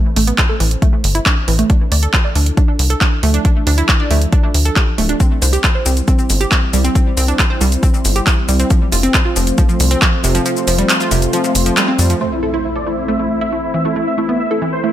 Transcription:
0.16 A1 A3, open hi-hat
0.27 B3, closed hi-hat
0.38 kick, clap, closed hi-hat
0.49 A4
0.60 A1 E3, open hi-hat
0.71 closed hi-hat
0.82 A3, kick, closed hi-hat
0.93 A3
1.04 G1, open hi-hat
1.15 E4, closed hi-hat
1.26 D4, kick, clap, closed hi-hat
1.48 A1 E3, open hi-hat
1.59 A3, closed hi-hat
1.70 D4, kick, closed hi-hat
1.92 D2 D5, open hi-hat
2.03 A4, closed hi-hat
2.14 kick, clap, closed hi-hat
2.25 D5
2.35 D2 D4, open hi-hat
2.46 closed hi-hat
2.57 D4, kick, closed hi-hat
2.68 D4
2.79 C2, open hi-hat
2.90 A4, closed hi-hat
3.01 D4, kick, clap, closed hi-hat
3.23 D2 A3, open hi-hat
3.34 D4, closed hi-hat
3.45 D4, kick, closed hi-hat
3.67 D2 D4, open hi-hat
3.78 E4, closed hi-hat
3.89 kick, clap, closed hi-hat
4.00 D5
4.11 D2 A3, open hi-hat
4.22 closed hi-hat
4.32 D4, kick, closed hi-hat
4.44 D4
4.54 D2, open hi-hat
4.65 A4, closed hi-hat
4.76 G4, kick, clap, closed hi-hat
4.98 D1 A3, open hi-hat
5.09 D4, closed hi-hat
5.20 C4, kick, closed hi-hat, shaker
5.42 C2 C5, open hi-hat, shaker
5.53 G4, closed hi-hat, shaker
5.64 kick, clap, closed hi-hat, shaker
5.75 C5
5.86 C2 C4, open hi-hat, shaker
5.97 closed hi-hat, shaker
6.08 C4, kick, closed hi-hat, shaker
6.19 C4, shaker
6.30 G1, open hi-hat, shaker
6.41 G4, closed hi-hat, shaker
6.52 C4, kick, clap, closed hi-hat, shaker
6.73 C2 G3, open hi-hat, shaker
6.84 C4, closed hi-hat, shaker
6.95 C4, kick, closed hi-hat, shaker
7.17 C2 C4, open hi-hat, shaker
7.28 D4, closed hi-hat, shaker
7.39 kick, clap, closed hi-hat, shaker
7.50 C5
7.61 C2 G3, open hi-hat, shaker
7.72 closed hi-hat, shaker
7.83 C4, kick, closed hi-hat, shaker
7.94 C4, shaker
8.05 G1, open hi-hat, shaker
8.16 G4, closed hi-hat, shaker
8.27 E4, kick, clap, closed hi-hat, shaker
8.49 C2 G3, open hi-hat, shaker
8.60 C4, closed hi-hat, shaker
8.70 F3, kick, closed hi-hat, shaker
8.92 F1 F4, open hi-hat, shaker
9.03 C4, closed hi-hat, shaker
9.14 kick, clap, closed hi-hat, shaker
9.25 F4
9.36 F1 F3, open hi-hat, shaker
9.47 closed hi-hat, shaker
9.58 F3, kick, closed hi-hat, shaker
9.69 F3, shaker
9.80 C2, open hi-hat, shaker
9.91 C4, closed hi-hat, shaker
10.02 F3, kick, clap, closed hi-hat, shaker
10.24 F1 C3, open hi-hat, shaker
10.35 F3, closed hi-hat, shaker
10.46 F3, closed hi-hat, shaker
10.57 shaker
10.67 F1 F3, open hi-hat, shaker
10.78 G3, closed hi-hat, shaker
10.89 clap, closed hi-hat, shaker
11.00 F4, shaker
11.11 F1 C3, open hi-hat, shaker
11.22 closed hi-hat, shaker
11.33 F3, closed hi-hat, shaker
11.44 F3, shaker
11.55 F1, open hi-hat, shaker
11.66 F3, closed hi-hat, shaker
11.77 G3, clap, closed hi-hat, shaker
11.88 C4
11.99 F2 G3, open hi-hat, shaker
12.10 F3, closed hi-hat, shaker
12.21 A3 C5, impact
12.32 E4
12.43 E4 A4
12.54 E4 C5
12.65 E4
12.76 A4 D5
12.87 A3 E4
12.98 E4
13.08 A3 E5
13.19 A3 E4
13.30 E4
13.41 E4 E5
13.52 A3 E4
13.63 E4
13.74 E3 E5
13.85 A3 E4
13.96 A3 E4
14.07 E5
14.18 A3 E4
14.29 B3 E4
14.40 E5
14.51 E4 A4
14.62 E3 E4
14.72 C5
14.83 A3 E4

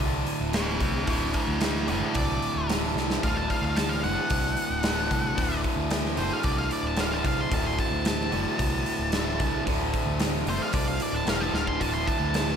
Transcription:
Already playing: D2 A2 D3
0.00 C2, kick
0.27 open hi-hat
0.41 D1
0.52 D2 A2 D3 A4 F5, snare, open hi-hat
0.80 C2 A4 F5, kick, open hi-hat
1.06 D1 D2 A2 D3 A4 F5, kick, open hi-hat
1.34 F#4 D5, kick, open hi-hat
1.48 D2
1.61 F#4 D5, snare, open hi-hat
1.75 snare
1.88 F#1 D2 A2 D3 F#4 D5, open hi-hat
2.15 C2 D5, kick, open hi-hat
2.42 open hi-hat
2.56 D1
2.69 D2 A2 D3, snare, open hi-hat
2.95 C2, snare
3.10 snare
3.23 D1 D2 A2 D3 F5, kick, open hi-hat
3.37 A5
3.50 F5, kick, open hi-hat
3.62 D2 F5
3.76 A5, snare, open hi-hat
3.89 F5
4.03 F#1 D2 A2 D3 F#5, open hi-hat
4.30 C2, kick, open hi-hat
4.57 open hi-hat
4.70 D1
4.83 D2 A2 D3, snare, open hi-hat
5.11 C2, kick, open hi-hat
5.36 D1 D2 A2 D3, kick, open hi-hat
5.64 kick, open hi-hat
5.76 D2
5.91 snare, open hi-hat
6.05 snare
6.16 F#1 D2 A2 D3 C5, open hi-hat
6.33 F5
6.43 C2 D5, kick, open hi-hat
6.58 F5
6.71 D5, open hi-hat
6.83 D1
6.87 A5
6.96 D2 A2 D3, snare, open hi-hat
7.00 F5
7.13 A5
7.24 C2 F5, kick, open hi-hat
7.41 C6
7.50 D1 D2 A2 D3 A5, kick, open hi-hat
7.67 C6
7.79 A5, kick, open hi-hat
7.91 D2
8.05 A5, snare, open hi-hat
8.20 snare
8.31 F#1 D2 A2 D3, open hi-hat
8.59 C2, kick, open hi-hat
8.86 open hi-hat
8.99 D1
9.12 D2 A2 D3, snare, open hi-hat
9.40 C2, kick, open hi-hat
9.66 D1 D2 A2 D3, kick, open hi-hat
9.93 kick, open hi-hat
10.06 D2
10.20 snare, open hi-hat
10.45 F#1 A2 D3, open hi-hat
10.49 D2 C5
10.62 F5
10.73 C2 D5, kick, open hi-hat
10.88 F5
11.00 D5, open hi-hat
11.13 D1 A5
11.26 E1 D2 A2 D3 F5, snare, open hi-hat
11.41 A5
11.53 D1 F5, snare
11.67 C6, kick
11.79 D1 D2 A2 D3 A5, kick, open hi-hat
11.94 C6
12.07 A5, kick, open hi-hat
12.20 D2
12.34 A5, snare, open hi-hat
12.48 snare

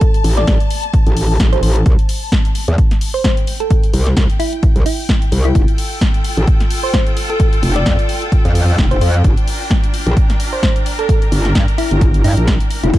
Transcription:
Already playing: A5
0.01 kick, closed hi-hat
0.14 closed hi-hat
0.24 A1, open hi-hat
0.37 D5, snare
0.47 A1, kick, snare, closed hi-hat
0.60 closed hi-hat
0.70 open hi-hat
0.83 closed hi-hat
0.94 kick, closed hi-hat
1.07 A1, closed hi-hat
1.17 open hi-hat
1.40 A1, kick, snare, closed hi-hat
1.53 C5, closed hi-hat
1.63 A1 C5, open hi-hat
1.76 closed hi-hat
1.86 C2, kick, closed hi-hat
1.99 closed hi-hat
2.09 open hi-hat
2.32 kick, snare, closed hi-hat
2.45 closed hi-hat
2.55 open hi-hat
2.68 E2, closed hi-hat
2.78 kick, closed hi-hat
2.91 snare, closed hi-hat
3.01 open hi-hat
3.14 C5
3.24 C5, kick, snare, closed hi-hat
3.31 G5
3.37 closed hi-hat
3.47 open hi-hat
3.60 A4, closed hi-hat
3.71 kick, closed hi-hat
3.83 closed hi-hat
3.94 C2, open hi-hat
4.07 snare, closed hi-hat
4.17 C2, kick, snare, closed hi-hat
4.30 closed hi-hat
4.40 E4, open hi-hat
4.53 closed hi-hat
4.63 kick, closed hi-hat
4.76 C2, closed hi-hat
4.86 E4, open hi-hat
5.09 kick, snare
5.22 closed hi-hat
5.32 C2, open hi-hat
5.45 E4, closed hi-hat
5.55 F1 F4, kick, closed hi-hat
5.68 closed hi-hat
5.74 A4, open hi-hat
6.01 kick, snare, closed hi-hat
6.14 closed hi-hat
6.24 open hi-hat
6.37 A1, closed hi-hat
6.47 kick, closed hi-hat
6.60 snare, closed hi-hat
6.71 open hi-hat
6.84 C5
6.93 C5, kick, snare
7.07 closed hi-hat
7.17 open hi-hat
7.30 A4, closed hi-hat
7.40 kick, closed hi-hat
7.53 closed hi-hat
7.63 F1, open hi-hat
7.76 D5, snare
7.86 F2, kick, snare, closed hi-hat
7.99 closed hi-hat
8.09 open hi-hat
8.22 closed hi-hat
8.32 kick, closed hi-hat
8.45 F2, closed hi-hat
8.55 open hi-hat
8.78 F1, kick, snare, closed hi-hat
8.91 C5, closed hi-hat
9.01 F2 C5, open hi-hat
9.14 closed hi-hat
9.24 G1 D4, kick, closed hi-hat
9.37 closed hi-hat
9.43 A#4
9.48 open hi-hat
9.71 kick, snare, closed hi-hat
9.84 closed hi-hat
9.94 open hi-hat
10.07 A#1, closed hi-hat
10.17 kick, closed hi-hat
10.30 snare, closed hi-hat
10.40 open hi-hat
10.53 C5
10.63 C5, kick, snare, closed hi-hat
10.76 closed hi-hat
10.86 open hi-hat
10.99 A4, closed hi-hat
11.09 kick, closed hi-hat
11.22 closed hi-hat
11.32 G1, open hi-hat
11.45 snare, closed hi-hat
11.55 G2, kick, snare, closed hi-hat
11.68 closed hi-hat
11.78 E4, open hi-hat
11.91 G1, closed hi-hat
12.01 kick, closed hi-hat
12.14 closed hi-hat
12.24 G2 E4, open hi-hat
12.37 A#1, closed hi-hat
12.47 kick, snare, closed hi-hat
12.60 closed hi-hat
12.71 open hi-hat
12.83 F1 E4, closed hi-hat
12.94 A1 E4, kick, closed hi-hat, crash

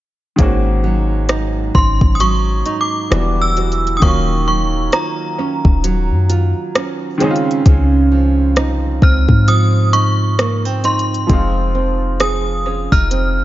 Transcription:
0.36 G#1 G#2 D#3 G#3 A#3, kick, closed hi-hat
0.41 C#4 F#4
0.84 F#3
1.29 D#4, cross-stick, closed hi-hat
1.75 G#1 C#4 C6, kick
2.01 G#1, kick
2.15 D#6
2.20 F#3 C#6, closed hi-hat
2.66 D#4, closed hi-hat
2.81 D6
3.10 E1 E3 G3 B3 D4 F#4, cross-stick, closed hi-hat
3.42 E6
3.56 F#4, closed hi-hat
3.72 closed hi-hat
3.87 closed hi-hat
3.97 D#3 D#6
4.01 D#1 D#3 F#3 A#3 C#4 C#6, kick, closed hi-hat
4.06 F4
4.47 F#3 C#6
4.92 F4 A#5, cross-stick, closed hi-hat
5.39 C#4
5.65 D#1, kick
5.84 F#3, closed hi-hat
6.10 F#2
6.29 F4, closed hi-hat
6.75 C#4, cross-stick, closed hi-hat
7.18 C#3 D#3 G#3 C4, closed hi-hat
7.23 C#4 D#4
7.31 F4
7.36 closed hi-hat
7.51 closed hi-hat
7.66 C#2 C#3, kick, closed hi-hat
8.11 F3
8.56 C2 D#4, cross-stick, closed hi-hat
9.02 C#2 C4 F6, kick
9.29 G#2, kick
9.48 F3 D#6, closed hi-hat
9.93 D#4 C#6, closed hi-hat
10.38 A#3, cross-stick, closed hi-hat
10.65 C4
10.84 D#4 C6, closed hi-hat
10.99 closed hi-hat
11.14 closed hi-hat
11.27 F1 F3 G#3 C4, kick, closed hi-hat
11.32 D#4 F4
11.75 C4
12.20 G#4 D#6, cross-stick, closed hi-hat
12.66 C#4
12.92 F1 D#4 F6, kick
13.11 C4, closed hi-hat

